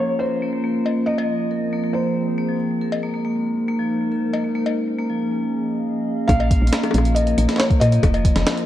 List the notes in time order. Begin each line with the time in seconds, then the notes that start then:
Already playing: F3 A#3 F4 C5 C#5
0.00 C#4
0.19 A#4 C5
0.42 A#3
0.53 A#3
0.64 A#3
0.86 cowbell
1.06 F3 A#3 D#5
1.18 F3, cowbell
1.25 C4
1.51 A#4
1.73 A#3
1.84 A#3 G#4
1.93 A#3 C5
2.38 A#3
2.49 F3
2.81 G#3 A#4
2.92 cowbell
3.03 A#3
3.10 A#3 A#4
3.21 A#3 D#4
3.41 C5
3.68 A#3
3.79 F3
4.12 A#4
4.33 A#3, cowbell
4.44 A#3
4.55 A#3 C#4
4.66 cowbell
4.81 G#4
4.99 A#3
5.10 F3
5.32 D#5 F5
6.28 A#1 A#3 F5, kick, closed hi-hat, high bongo
6.40 cowbell
6.51 kick, closed hi-hat
6.55 F4
6.62 A#1
6.67 closed hi-hat
6.73 A#3, snare, closed hi-hat
6.83 F3, closed hi-hat, high bongo
6.91 A#1, closed hi-hat, high bongo
6.98 high bongo
7.05 C5 C#5, closed hi-hat
7.15 A#4 D#5, closed hi-hat
7.27 closed hi-hat
7.38 A#1 A#3, closed hi-hat
7.49 A#3, snare, closed hi-hat
7.56 C#5, snare
7.60 A#3, snare, closed hi-hat
7.63 snare
7.70 kick, closed hi-hat
7.80 A#2 D#5, closed hi-hat, cowbell
7.92 closed hi-hat
8.03 F1 F3 A#3, kick, closed hi-hat, high bongo
8.14 F3, closed hi-hat, cowbell
8.25 kick, closed hi-hat
8.36 F1, snare, closed hi-hat
8.47 C4 A#4, snare, closed hi-hat
8.57 closed hi-hat